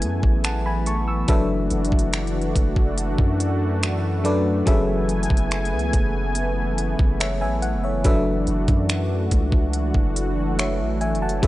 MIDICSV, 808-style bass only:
0, 0, Header, 1, 2, 480
1, 0, Start_track
1, 0, Tempo, 845070
1, 732, Time_signature, 4, 2, 24, 8
1, 6517, End_track
2, 0, Start_track
2, 0, Title_t, "808-style bass"
2, 0, Program_c, 0, 38
2, 15, Note_on_c, 0, 42, 90
2, 127, Note_off_c, 0, 42, 0
2, 133, Note_on_c, 0, 33, 96
2, 710, Note_off_c, 0, 33, 0
2, 731, Note_on_c, 0, 30, 105
2, 962, Note_off_c, 0, 30, 0
2, 973, Note_on_c, 0, 30, 106
2, 1088, Note_off_c, 0, 30, 0
2, 1093, Note_on_c, 0, 30, 102
2, 1438, Note_off_c, 0, 30, 0
2, 1453, Note_on_c, 0, 30, 99
2, 1798, Note_off_c, 0, 30, 0
2, 1810, Note_on_c, 0, 42, 99
2, 2629, Note_off_c, 0, 42, 0
2, 2654, Note_on_c, 0, 30, 107
2, 2999, Note_off_c, 0, 30, 0
2, 3013, Note_on_c, 0, 30, 105
2, 3254, Note_on_c, 0, 37, 95
2, 3263, Note_off_c, 0, 30, 0
2, 3367, Note_off_c, 0, 37, 0
2, 3372, Note_on_c, 0, 30, 101
2, 3950, Note_off_c, 0, 30, 0
2, 3974, Note_on_c, 0, 30, 98
2, 4215, Note_on_c, 0, 33, 93
2, 4224, Note_off_c, 0, 30, 0
2, 4395, Note_on_c, 0, 30, 97
2, 4403, Note_off_c, 0, 33, 0
2, 4565, Note_off_c, 0, 30, 0
2, 4573, Note_on_c, 0, 30, 110
2, 4803, Note_off_c, 0, 30, 0
2, 4814, Note_on_c, 0, 30, 104
2, 4929, Note_off_c, 0, 30, 0
2, 4933, Note_on_c, 0, 42, 99
2, 5278, Note_off_c, 0, 42, 0
2, 5293, Note_on_c, 0, 37, 102
2, 5638, Note_off_c, 0, 37, 0
2, 5650, Note_on_c, 0, 30, 98
2, 6137, Note_on_c, 0, 33, 93
2, 6145, Note_off_c, 0, 30, 0
2, 6317, Note_on_c, 0, 30, 97
2, 6325, Note_off_c, 0, 33, 0
2, 6486, Note_off_c, 0, 30, 0
2, 6494, Note_on_c, 0, 30, 108
2, 6517, Note_off_c, 0, 30, 0
2, 6517, End_track
0, 0, End_of_file